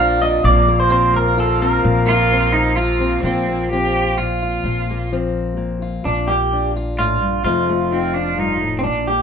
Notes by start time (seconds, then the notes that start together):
Already playing: A#1 A#2 C3 F3 A#3 C4 D4 F5
0.00 F4
0.22 D4 D#5
0.44 A#1 A#2 A#3 F4 D5
0.68 A#3
0.80 C5
0.90 C4 C5
1.14 A#3 A#4
1.37 F4 A4
1.62 C4 A#4
1.84 A#1 A#2
2.06 A#3 F4
2.32 C4
2.52 A#3 D#4
2.76 F4
3.00 C4
3.22 A#1 A#2 F3 A#3 C4
3.26 F4
3.48 A#3
3.70 F3 C4 G4
4.18 A#2 F4
4.42 F4
4.64 A#1 A#2
4.90 A#3
5.12 F3 C4
5.57 A#2
5.82 F4
6.05 A#1 A#2 D4
6.28 A#3 G4
6.53 D4
6.76 F4
6.98 A2 F4
7.21 G2
7.44 F1 F2 F3 A3 D#4 F4
7.69 A3
7.91 C4 D#4
8.14 D4 D#4
8.38 G2 D#4
8.61 A2
8.79 C4
8.84 A#1 A#2 D4
9.07 A#3 G4